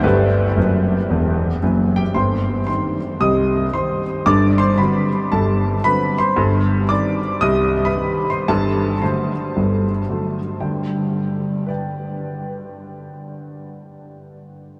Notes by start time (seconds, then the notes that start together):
0.03 G1 G2 B3 G4 B4
0.56 F#1 F#2
1.10 E1 E2
1.63 F#1 F#2
1.96 G4 G5
2.14 G1 G2 C5 C6
2.67 D#3 G3 C4 C5 C6
3.20 C2 C3 D#5 D#6
3.73 D#3 G3 C4 C5 C6
4.26 G1 G2 D5 D6
4.58 C5 C6
4.78 D3 F#3 C4 B4 B5
5.32 G1 G2 A4 A5
5.84 D3 F#3 C4 B4 B5
6.18 C5 C6
6.36 G1 G2
6.89 D#3 G3 C4 D5 D6
7.41 C2 C3 D#5 D#6
7.85 B4 B5
7.96 D#3 G3 C4
8.30 C5 C6
8.48 G1 G2 A4 A5
9.01 D3 F#3 A3 C5 C6
9.56 G1 G2
10.09 D3 F#3 A3
10.60 G2 D3 G5
11.66 B4 D5 G5